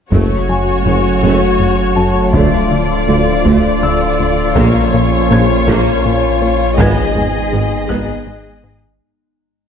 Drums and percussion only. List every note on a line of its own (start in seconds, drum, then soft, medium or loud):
0.12 taiko medium
2.34 taiko medium
3.45 taiko medium
4.56 taiko loud
5.67 taiko medium
6.78 taiko loud
7.15 taiko low soft
7.89 taiko medium